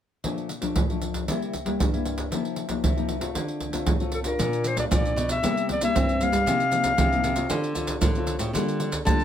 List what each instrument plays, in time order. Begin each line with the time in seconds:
0.24 nylon-string guitar A#2 F3 A3 D4, pandeiro, surdo
0.38 pandeiro
0.49 pandeiro
0.61 nylon-string guitar F3 A3 D4, pandeiro, surdo
0.75 nylon-string guitar F2, pandeiro, surdo
0.90 nylon-string guitar F3 A3 D4, pandeiro
1.01 pandeiro
1.14 pandeiro, surdo
1.28 nylon-string guitar C3 G3 A#3 E4, pandeiro, surdo
1.42 pandeiro
1.53 pandeiro, surdo
1.65 nylon-string guitar G3 A#3 E4, pandeiro, surdo
1.79 nylon-string guitar G2, pandeiro, surdo
1.93 nylon-string guitar G3 A#3 E4, pandeiro
2.05 pandeiro
2.18 pandeiro, surdo
2.31 nylon-string guitar C3 F3 A#3 D#4, pandeiro, surdo
2.45 pandeiro
2.56 pandeiro
2.68 nylon-string guitar F3 A#3 D#4, pandeiro, surdo
2.84 nylon-string guitar C3, pandeiro, surdo
2.97 nylon-string guitar F3 A#3 D#4, pandeiro
3.09 pandeiro
3.20 nylon-string guitar A3 C4 F4, pandeiro, surdo
3.35 nylon-string guitar D3, pandeiro, surdo
3.48 pandeiro
3.60 pandeiro, surdo
3.72 nylon-string guitar A3 C4 F4, pandeiro, surdo
3.86 nylon-string guitar A2, pandeiro, surdo
4.00 nylon-string guitar A3 C4 F4, pandeiro
4.12 clarinet A4, pandeiro
4.24 nylon-string guitar D4 F4, clarinet A#4, pandeiro, surdo
4.39 nylon-string guitar A#2, pandeiro, maracas, surdo
4.53 pandeiro, maracas
4.64 clarinet C5, pandeiro, maracas
4.76 nylon-string guitar A3 D4 F4, clarinet D5, pandeiro, maracas, surdo
4.91 nylon-string guitar A#2 F3 A3 D4 F4, clarinet D5, pandeiro, maracas, surdo
5.05 pandeiro, maracas
5.16 nylon-string guitar B2, pandeiro, maracas
5.29 clarinet E5, pandeiro, maracas, surdo
5.42 nylon-string guitar C3 G3 A#3 E4, pandeiro, maracas, surdo
5.57 pandeiro, maracas
5.69 clarinet D5, pandeiro, surdo
5.81 nylon-string guitar G3 A#3 E4, clarinet E5, pandeiro, maracas, surdo
5.95 nylon-string guitar G2 C4, pandeiro, maracas, surdo
6.09 pandeiro, maracas
6.20 nylon-string guitar G3 A#3 E4, clarinet F5, pandeiro, maracas
6.32 nylon-string guitar G3, pandeiro, maracas, surdo
6.47 nylon-string guitar C3 F3 A#3 D#4, pandeiro, maracas, surdo
6.60 pandeiro, maracas
6.72 nylon-string guitar F3 A#3 D#4, pandeiro, maracas
6.84 pandeiro, maracas, surdo
6.98 nylon-string guitar C3, pandeiro, maracas, surdo
7.13 nylon-string guitar F3 A#3 D#4, pandeiro, maracas
7.24 nylon-string guitar C3, pandeiro, maracas
7.36 nylon-string guitar A3 C4 F4, pandeiro, maracas, surdo
7.50 nylon-string guitar D3, pandeiro, maracas, surdo
7.64 pandeiro, maracas
7.75 nylon-string guitar A3 C4 F4, pandeiro, maracas, surdo
7.87 pandeiro, maracas, surdo
8.01 nylon-string guitar A2 D3, pandeiro, maracas, surdo
8.15 nylon-string guitar A3 C4 F4, pandeiro, maracas
8.27 pandeiro, maracas
8.39 nylon-string guitar A2, pandeiro, maracas, surdo
8.54 nylon-string guitar D3 G3 A#3 F4, pandeiro, maracas, surdo
8.68 pandeiro, maracas
8.80 pandeiro
8.92 pandeiro, maracas, surdo
9.06 nylon-string guitar D3 G3 A#3 F4, clarinet A5, pandeiro, maracas, surdo
9.20 pandeiro, maracas